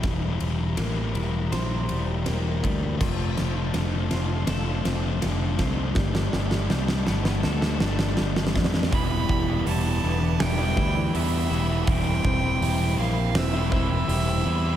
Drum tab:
CC |--------------------------------|x-------------------------------|--------------------------------|--------------------------------|
RD |x---x---x---x---x---x---x---x---|----x---x---x---x---x---x---x---|--------------------------------|--------------------------------|
HH |--------------------------------|--------------------------------|--------------------------------|o-------o-------o-------o-------|
SD |o-------o-------o-------o-------|o---o---o---o---o---o---o---o---|o-o-o-o-o-o-o-o-o-o-o-o-o-oooooo|----------------o---------------|
BD |o---------------------------o---|o---------------------------o---|o---------------------------o---|o---o---------------o-----------|

CC |--------------------------------|
RD |--------------------------------|
HH |o-------o-------o-------o-------|
SD |----------------o---------------|
BD |o---o---------------o-----------|